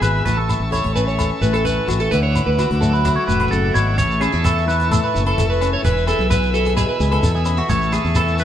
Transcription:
Already playing: nylon-string guitar B2 E3 B3 E4, transistor combo organ E5 G#5 B5
0.01 fingered electric bass G#1, nylon-string guitar G#4, clean electric guitar B4, cajon slap, low agogo, shekere
0.25 fingered electric bass A1, nylon-string guitar A2, clean electric guitar B4, transistor combo organ A5 C#6, cajon bass, shekere
0.37 clean electric guitar A4
0.49 nylon-string guitar E4, cajon slap, low agogo, shekere
0.60 fingered electric bass A1
0.71 nylon-string guitar A4, clean electric guitar C#5, cajon bass, cajon slap, low agogo, shekere
0.84 fingered electric bass A1, cajon bass
0.95 nylon-string guitar E3 C#4, clean electric guitar B4, shekere
1.07 clean electric guitar C#5, shekere
1.19 nylon-string guitar A4, cajon bass, cajon slap, low agogo, shekere
1.41 fingered electric bass A1, nylon-string guitar A2, clean electric guitar B4, shekere
1.53 clean electric guitar A4, cajon slap, low agogo, shekere
1.65 nylon-string guitar E4, clean electric guitar B4, cajon bass, shekere
1.87 fingered electric bass A1, nylon-string guitar F#4, cajon slap, low agogo, shekere
2.00 nylon-string guitar A4, clean electric guitar A4
2.11 fingered electric bass D2, nylon-string guitar D3, clean electric guitar B4, transistor combo organ E5 F#5 D6, cajon bass, shekere
2.23 clean electric guitar C#5
2.35 nylon-string guitar E4, cajon slap, low agogo, shekere
2.46 fingered electric bass D2, clean electric guitar B4
2.58 nylon-string guitar F#4, cajon bass, cajon slap, low agogo, shekere
2.71 fingered electric bass D2, cajon bass
2.81 nylon-string guitar F#3 A3, clean electric guitar A4, shekere
2.93 clean electric guitar B4, shekere
3.05 nylon-string guitar F#4, cajon bass, cajon slap, low agogo, shekere
3.16 clean electric guitar C#5
3.27 fingered electric bass E1, nylon-string guitar A2, clean electric guitar B4, cajon slap, shekere
3.40 cajon slap, low agogo
3.50 fingered electric bass F#1, nylon-string guitar C#3, clean electric guitar A4, shekere
3.73 fingered electric bass G#1, nylon-string guitar B2, clean electric guitar C#5, cajon slap, low agogo, shekere
3.96 fingered electric bass A1, nylon-string guitar A2, clean electric guitar C#5, transistor combo organ E5 A5 C#6, cajon bass, shekere
4.11 shekere
4.20 nylon-string guitar C#4, clean electric guitar G#4, cajon slap, low agogo, shekere
4.32 fingered electric bass E2, nylon-string guitar E4, shekere
4.43 nylon-string guitar E3, clean electric guitar A4, cajon bass, cajon slap, low agogo, shekere
4.58 shekere
4.67 nylon-string guitar E4, clean electric guitar B4, cajon slap, shekere
4.80 cajon slap, shekere
4.90 nylon-string guitar A2, clean electric guitar A4, cajon bass, cajon slap, low agogo, shekere
5.04 clean electric guitar B4
5.14 fingered electric bass F#1, nylon-string guitar E4, cajon slap, shekere
5.26 clean electric guitar A4, cajon slap, low agogo
5.38 fingered electric bass F1, nylon-string guitar A4, cajon bass, shekere
5.50 clean electric guitar B4, shekere
5.61 nylon-string guitar C#4, cajon slap, low agogo, shekere
5.73 clean electric guitar C#5
5.83 fingered electric bass E1, nylon-string guitar E3, clean electric guitar B4, transistor combo organ G#5 B5, cajon bass, shekere
5.97 shekere
6.07 nylon-string guitar G#4, clean electric guitar A4, cajon slap, low agogo, shekere
6.19 fingered electric bass B1, shekere
6.30 nylon-string guitar B3, clean electric guitar B4, cajon bass, cajon slap, low agogo, shekere
6.43 shekere
6.54 nylon-string guitar F#4, clean electric guitar A4, cajon slap, shekere
6.65 nylon-string guitar G#4, cajon slap
6.76 nylon-string guitar B2, clean electric guitar G#4, cajon bass, cajon slap, low agogo, shekere
6.89 clean electric guitar B4
7.00 fingered electric bass C#2, nylon-string guitar G#4, cajon slap, shekere
7.12 clean electric guitar A4, cajon slap, low agogo
7.23 fingered electric bass E2, nylon-string guitar A4, cajon bass, shekere
7.35 clean electric guitar G#4, shekere
7.45 nylon-string guitar C#4, cajon slap, low agogo, shekere
7.57 nylon-string guitar E4, clean electric guitar F#4
7.68 fingered electric bass A1, nylon-string guitar A2, clean electric guitar C#5, transistor combo organ E5 A5 C#6, cajon bass, shekere
7.82 shekere
7.92 nylon-string guitar E4, clean electric guitar G#4, cajon slap, low agogo, shekere
8.05 fingered electric bass E2, shekere
8.15 nylon-string guitar E3, clean electric guitar A4, cajon bass, cajon slap, low agogo, shekere
8.28 shekere
8.39 nylon-string guitar E4, clean electric guitar B4, shekere

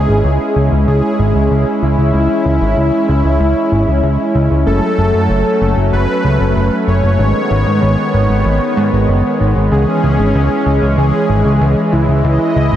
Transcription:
Already playing: analog synth pad G#3 C#4 E4, supersaw synth G#4
0.09 analog synth bass G#1
0.24 analog synth bass C#2
0.56 analog synth bass C#2
0.72 analog synth bass C#2
0.87 analog synth bass C#2, supersaw synth G#4
1.19 analog synth bass G#1
1.35 analog synth bass C#2
1.51 analog synth bass C#2
1.82 analog synth bass C#2, supersaw synth E4
1.98 analog synth bass C#2
2.14 analog synth bass C#2
2.45 analog synth bass C#2
2.61 analog synth bass G#1
2.77 analog synth bass C#2
3.08 analog synth bass C#2
3.24 analog synth bass C#2
3.40 analog synth bass C#2
3.72 analog synth bass G#1
3.87 analog synth bass C#2
4.03 analog synth bass C#2
4.35 analog synth bass C#2
4.51 analog synth bass C#2
4.66 analog synth bass F#1, analog synth pad F#3 A3, supersaw synth A4
4.98 analog synth bass F#1
5.14 analog synth bass F#2
5.30 analog synth bass F#1
5.61 analog synth bass F#1
5.77 analog synth bass F#1
5.93 analog synth bass F#1, supersaw synth B4
6.24 analog synth bass C#2
6.40 analog synth bass F#1
6.56 analog synth bass F#1
6.87 analog synth bass F#1, supersaw synth C#5
7.03 analog synth bass F#1
7.19 analog synth bass G#1, analog synth pad D#3 G#3 B3
7.51 analog synth bass G#1
7.66 analog synth bass G#2
7.82 analog synth bass G#1
8.14 analog synth bass G#1
8.30 analog synth bass G#1
8.45 analog synth bass G#1
8.77 analog synth bass G#2
8.93 analog synth bass G#1
9.08 analog synth bass F#1
9.40 analog synth bass G#1
9.56 analog synth bass G#1
9.72 analog synth bass C#2, analog synth pad E3 C#4, supersaw synth G#4
10.03 analog synth bass C#2
10.19 analog synth bass G#1
10.35 analog synth bass C#2
10.66 analog synth bass C#2
10.82 analog synth bass C#2
10.97 analog synth bass C#2, supersaw synth G#4
11.29 analog synth bass G#1
11.45 analog synth bass C#2
11.61 analog synth bass C#2
11.92 analog synth bass C#2, supersaw synth E4
12.08 analog synth bass C#2
12.24 analog synth bass C#2, analog synth pad D#5
12.56 analog synth bass C#2
12.72 analog synth bass G#1

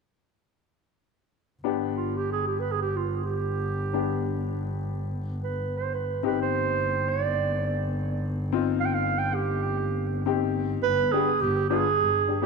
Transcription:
1.63 double bass G1, upright piano B3 D4 G4
1.96 clarinet F4
2.17 clarinet G4
2.32 clarinet G#4
2.48 clarinet G4
2.60 clarinet B4
2.72 clarinet G#4
2.82 clarinet G4
2.96 clarinet F4
3.24 clarinet G4
3.93 upright piano B3 D4 G4
5.43 clarinet B4
5.77 clarinet C5
5.94 clarinet B4
6.23 double bass G1, upright piano C4 D#4 G4, clarinet B4
6.41 clarinet C5
7.09 clarinet D5
8.52 upright piano C4 D#4 F4
8.80 clarinet F5
8.85 clarinet G5
8.94 clarinet F5
9.18 clarinet G5
9.35 clarinet G4
10.26 upright piano C4 D#4 G4
10.83 double bass G1, clarinet B4
11.12 upright piano B3 D4 G4, clarinet G#4
11.41 double bass G1, clarinet G4
11.69 upright piano B3 D4 F4, clarinet G#4
11.99 double bass G2
12.28 upright piano D4 G4
12.42 upright piano B3 D4 G4, clarinet G4

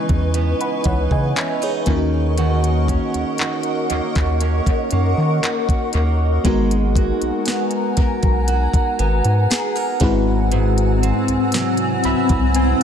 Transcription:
Already playing: steel-string acoustic guitar C#3 E3 B3 D#4, fm electric piano G#3 C#4 D#4 E4 B4, ambient pad B4 D#5 G#5 C#6
0.09 analog synth bass E2, kick, closed hi-hat
0.34 steel-string acoustic guitar B3, closed hi-hat
0.61 fm electric piano F#5 B5, closed hi-hat
0.84 analog synth bass C#2, steel-string acoustic guitar E3, fm electric piano C#5 F#5, kick, closed hi-hat
1.11 analog synth bass C#3, fm electric piano D#5 G#5, kick
1.36 steel-string acoustic guitar C#4, fm electric piano B4 E5, clap, closed hi-hat
1.62 steel-string acoustic guitar D#4, fm electric piano G#4 C#5, closed hi-hat
1.86 analog synth bass D#2, steel-string acoustic guitar D#3, fm electric piano A#3 C#4 D#4 F4, ambient pad A#4 F#5, kick, closed hi-hat
1.90 fm electric piano A#4
1.96 fm electric piano F#4
2.38 steel-string acoustic guitar D#3 F#4, closed hi-hat
2.64 closed hi-hat
2.88 steel-string acoustic guitar C#4, kick, closed hi-hat
3.14 analog synth bass D#2, closed hi-hat
3.38 steel-string acoustic guitar F#4, clap, closed hi-hat
3.63 closed hi-hat
3.90 analog synth bass D#2, steel-string acoustic guitar A#3, closed hi-hat
4.15 analog synth bass D#2, kick, clap, closed hi-hat
4.40 steel-string acoustic guitar C#4, closed hi-hat
4.66 kick, closed hi-hat
4.91 analog synth bass F#2, steel-string acoustic guitar A#3, closed hi-hat
5.18 analog synth bass D#3
5.43 steel-string acoustic guitar F#4, clap, closed hi-hat
5.69 kick, closed hi-hat
5.93 analog synth bass D#2, steel-string acoustic guitar A#3, closed hi-hat
6.44 analog synth bass G#1, fm electric piano G#3 B3 D#4 F#4 A#4, steel-string acoustic guitar G#3, ambient pad F#5 G#5 A#5, kick, closed hi-hat
6.71 closed hi-hat
6.96 steel-string acoustic guitar F#4, kick, closed hi-hat
7.22 analog synth bass B1, closed hi-hat
7.46 steel-string acoustic guitar B3, snare, closed hi-hat
7.71 closed hi-hat
7.97 analog synth bass B1, steel-string acoustic guitar A#4, kick, closed hi-hat
8.23 analog synth bass B1, kick, closed hi-hat
8.48 steel-string acoustic guitar F#4, closed hi-hat
8.74 kick, closed hi-hat
8.99 analog synth bass G#1, steel-string acoustic guitar B3, closed hi-hat
9.24 analog synth bass G#2, closed hi-hat
9.50 steel-string acoustic guitar G#4, snare, closed hi-hat
9.76 steel-string acoustic guitar A#4, closed hi-hat
10.00 analog synth bass G#1, steel-string acoustic guitar G#2, fm electric piano G#3 C4 E4 F#4, ambient pad C4 G#5 E6, kick, closed hi-hat
10.04 fm electric piano B4
10.52 steel-string acoustic guitar G#2, closed hi-hat
10.78 closed hi-hat
11.03 steel-string acoustic guitar C4, closed hi-hat
11.28 analog synth bass C2, closed hi-hat
11.52 steel-string acoustic guitar F#3, snare, closed hi-hat
11.77 closed hi-hat
12.04 analog synth bass C2, steel-string acoustic guitar E4, fm electric piano B5, closed hi-hat
12.29 analog synth bass C2, kick, closed hi-hat
12.54 steel-string acoustic guitar C4, fm electric piano G#5, closed hi-hat

